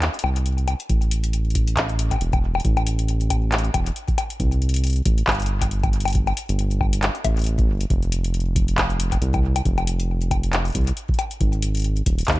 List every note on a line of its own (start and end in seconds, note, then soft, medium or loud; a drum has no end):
0.02 clap loud
0.02 closed hi-hat medium
0.14 closed hi-hat soft
0.19 closed hi-hat medium
0.24 0.75 C2 medium
0.24 high bongo medium
0.36 closed hi-hat medium
0.46 closed hi-hat medium
0.58 closed hi-hat soft
0.68 closed hi-hat medium
0.68 high bongo medium
0.80 closed hi-hat medium
0.89 2.17 A1 medium
0.89 kick loud
0.89 closed hi-hat medium
1.02 closed hi-hat soft
1.11 closed hi-hat medium
1.24 closed hi-hat medium
1.33 closed hi-hat medium
1.50 closed hi-hat soft
1.55 kick loud
1.55 closed hi-hat medium
1.67 closed hi-hat medium
1.77 kick medium
1.77 clap loud
1.77 closed hi-hat medium
1.89 closed hi-hat soft
1.99 closed hi-hat medium
2.11 kick medium
2.11 closed hi-hat medium
2.11 high bongo soft
2.14 high bongo soft
2.16 high bongo soft
2.19 2.61 E1 medium
2.19 closed hi-hat medium
2.19 high bongo soft
2.33 kick loud
2.33 closed hi-hat soft
2.33 high bongo medium
2.55 high bongo medium
2.60 closed hi-hat medium
2.65 3.70 A1 loud
2.65 kick loud
2.65 closed hi-hat medium
2.77 closed hi-hat soft
2.77 high bongo medium
2.87 closed hi-hat medium
2.99 closed hi-hat medium
3.08 closed hi-hat medium
3.21 closed hi-hat soft
3.30 kick loud
3.30 closed hi-hat medium
3.30 high bongo medium
3.52 clap loud
3.52 closed hi-hat medium
3.58 closed hi-hat medium
3.65 closed hi-hat soft
3.74 3.91 E1 medium
3.74 kick loud
3.74 closed hi-hat loud
3.74 high bongo medium
3.86 closed hi-hat medium
3.96 closed hi-hat medium
4.08 kick loud
4.08 closed hi-hat soft
4.18 closed hi-hat medium
4.18 high bongo medium
4.30 closed hi-hat medium
4.40 5.02 C2 loud
4.40 kick loud
4.40 closed hi-hat soft
4.52 closed hi-hat soft
4.62 closed hi-hat soft
4.69 closed hi-hat medium
4.74 closed hi-hat medium
4.76 closed hi-hat medium
4.84 closed hi-hat soft
4.87 closed hi-hat soft
4.90 closed hi-hat soft
4.93 closed hi-hat soft
4.96 closed hi-hat soft
5.06 5.23 A1 medium
5.06 kick loud
5.06 closed hi-hat medium
5.18 closed hi-hat medium
5.27 6.33 G1 medium
5.27 kick medium
5.27 clap loud
5.27 closed hi-hat soft
5.32 closed hi-hat soft
5.35 closed hi-hat soft
5.40 closed hi-hat soft
5.42 closed hi-hat soft
5.46 closed hi-hat soft
5.62 kick medium
5.62 closed hi-hat medium
5.62 high bongo soft
5.71 closed hi-hat soft
5.83 kick loud
5.83 closed hi-hat soft
5.83 high bongo soft
5.93 closed hi-hat soft
6.00 closed hi-hat medium
6.05 closed hi-hat soft
6.05 high bongo medium
6.08 closed hi-hat medium
6.10 closed hi-hat soft
6.13 closed hi-hat soft
6.15 kick loud
6.15 closed hi-hat medium
6.27 closed hi-hat soft
6.27 high bongo medium
6.37 closed hi-hat medium
6.49 7.10 G1 loud
6.49 closed hi-hat medium
6.59 closed hi-hat soft
6.71 closed hi-hat soft
6.81 kick loud
6.81 high bongo medium
6.93 closed hi-hat medium
7.03 clap loud
7.03 closed hi-hat medium
7.15 closed hi-hat soft
7.25 7.70 A1 loud
7.25 kick loud
7.25 closed hi-hat medium
7.25 high bongo medium
7.37 closed hi-hat soft
7.39 closed hi-hat soft
7.42 closed hi-hat soft
7.44 closed hi-hat soft
7.46 closed hi-hat soft
7.59 kick loud
7.59 closed hi-hat soft
7.68 7.86 G1 medium
7.81 closed hi-hat soft
7.90 9.18 F1 medium
7.90 kick loud
7.90 closed hi-hat soft
8.03 closed hi-hat soft
8.12 closed hi-hat medium
8.24 closed hi-hat medium
8.34 closed hi-hat soft
8.40 closed hi-hat soft
8.56 kick loud
8.56 closed hi-hat medium
8.68 closed hi-hat soft
8.78 kick medium
8.78 clap loud
8.78 closed hi-hat medium
8.90 closed hi-hat soft
9.00 closed hi-hat medium
9.12 kick medium
9.12 closed hi-hat medium
9.12 high bongo soft
9.22 9.62 C2 medium
9.22 closed hi-hat soft
9.34 kick loud
9.34 closed hi-hat soft
9.34 high bongo soft
9.56 closed hi-hat medium
9.56 high bongo medium
9.65 10.71 F1 loud
9.65 kick loud
9.65 closed hi-hat soft
9.78 closed hi-hat soft
9.78 high bongo medium
9.87 closed hi-hat medium
10.00 closed hi-hat soft
10.22 closed hi-hat soft
10.31 kick loud
10.31 closed hi-hat medium
10.31 high bongo medium
10.43 closed hi-hat medium
10.53 clap loud
10.53 closed hi-hat soft
10.65 closed hi-hat soft
10.68 closed hi-hat soft
10.70 closed hi-hat soft
10.72 10.92 C2 medium
10.72 kick loud
10.72 closed hi-hat soft
10.75 closed hi-hat medium
10.81 closed hi-hat soft
10.84 closed hi-hat soft
10.87 closed hi-hat soft
10.97 closed hi-hat soft
11.09 kick loud
11.14 closed hi-hat soft
11.19 closed hi-hat medium
11.19 high bongo medium
11.31 closed hi-hat soft
11.41 12.02 G#1 medium
11.41 kick loud
11.41 closed hi-hat medium
11.53 closed hi-hat soft
11.62 closed hi-hat medium
11.75 closed hi-hat soft
11.77 closed hi-hat soft
11.80 closed hi-hat soft
11.82 closed hi-hat soft
11.84 closed hi-hat soft
11.97 closed hi-hat soft
12.06 12.23 D#1 medium
12.06 kick loud
12.06 closed hi-hat medium
12.19 closed hi-hat soft
12.21 closed hi-hat soft
12.25 12.40 D#2 medium
12.25 kick medium
12.25 clap loud
12.25 closed hi-hat soft
12.28 closed hi-hat medium
12.35 closed hi-hat soft